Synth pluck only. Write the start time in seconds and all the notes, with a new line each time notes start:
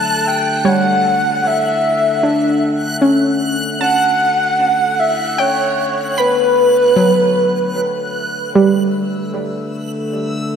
Already playing: F#3 E5
0.65 G3 C#5
2.23 D4
3.02 C#4
3.81 A5
5.38 G5
6.18 B5
6.96 F#3
8.55 G3